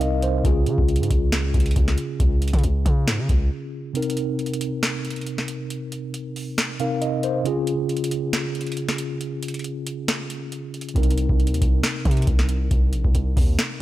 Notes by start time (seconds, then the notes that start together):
Already playing: C2 C3 C4 D#4 A#4 F5
0.01 D#5, closed hi-hat
0.22 C5, closed hi-hat
0.43 C#2 C#3 C#4 F4 G#4, kick, closed hi-hat
0.66 C#3, closed hi-hat
0.78 C#2, kick
0.89 closed hi-hat
0.96 closed hi-hat
1.00 G#2, closed hi-hat
1.10 C#2, kick, closed hi-hat
1.32 snare, closed hi-hat
1.54 C#2, kick, closed hi-hat
1.60 closed hi-hat
1.66 closed hi-hat
1.71 closed hi-hat
1.76 C#2, kick, closed hi-hat
1.88 snare
1.98 closed hi-hat
2.20 C#2, kick, closed hi-hat
2.42 closed hi-hat
2.48 closed hi-hat
2.53 C#3, kick, closed hi-hat
2.59 closed hi-hat
2.64 C#2, closed hi-hat
2.86 C#3, kick, closed hi-hat
3.08 G#2, snare, closed hi-hat
3.19 C#3
3.29 C#2, kick, closed hi-hat
3.93 C3 C4 D#4 A#4, closed hi-hat
4.02 closed hi-hat
4.10 closed hi-hat
4.17 closed hi-hat
4.39 closed hi-hat
4.46 closed hi-hat
4.54 closed hi-hat
4.61 closed hi-hat
4.83 snare, closed hi-hat
5.05 closed hi-hat
5.10 closed hi-hat
5.16 closed hi-hat
5.21 closed hi-hat
5.27 closed hi-hat
5.38 snare
5.48 closed hi-hat
5.70 closed hi-hat
5.92 closed hi-hat
6.14 closed hi-hat
6.36 open hi-hat
6.58 snare, closed hi-hat
6.79 C3 C4 D#4 A#4 F5, closed hi-hat
7.02 D#5, closed hi-hat
7.23 C5, closed hi-hat
7.44 C#3 C#4 F4 G#4, closed hi-hat
7.67 closed hi-hat
7.89 closed hi-hat
7.97 closed hi-hat
8.04 closed hi-hat
8.11 closed hi-hat
8.33 snare, closed hi-hat
8.55 closed hi-hat
8.61 closed hi-hat
8.67 closed hi-hat
8.72 closed hi-hat
8.77 closed hi-hat
8.89 snare
8.98 closed hi-hat
9.21 closed hi-hat
9.43 closed hi-hat
9.48 closed hi-hat
9.54 closed hi-hat
9.59 closed hi-hat
9.64 closed hi-hat
9.87 closed hi-hat
10.08 snare, closed hi-hat
10.30 closed hi-hat
10.52 closed hi-hat
10.74 closed hi-hat
10.81 closed hi-hat
10.89 closed hi-hat
10.94 C2 C3 C4 D#4 A#4, kick, closed hi-hat
11.03 closed hi-hat
11.10 closed hi-hat
11.18 closed hi-hat
11.29 C2, kick
11.40 closed hi-hat
11.47 closed hi-hat
11.51 D#2, closed hi-hat
11.62 C2, kick, closed hi-hat
11.83 snare, closed hi-hat
12.05 C3, kick, closed hi-hat
12.11 closed hi-hat
12.17 closed hi-hat
12.22 closed hi-hat
12.27 C2, kick, closed hi-hat
12.39 snare
12.49 closed hi-hat
12.71 C2, kick, closed hi-hat
12.93 A#1, closed hi-hat
13.04 C2, kick
13.15 C2, closed hi-hat
13.37 D#2, kick, open hi-hat
13.59 snare, closed hi-hat